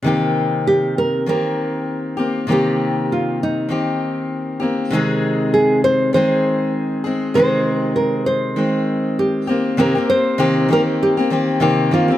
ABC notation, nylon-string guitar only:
X:1
M:4/4
L:1/8
Q:"Swing 16ths" 1/4=99
K:Cm
V:1 name="Nylon-string guitar"
z2 G B B4 | G2 F E4 z | z2 A c c4 | c2 B c3 G2 |
B c2 B G2 z F |]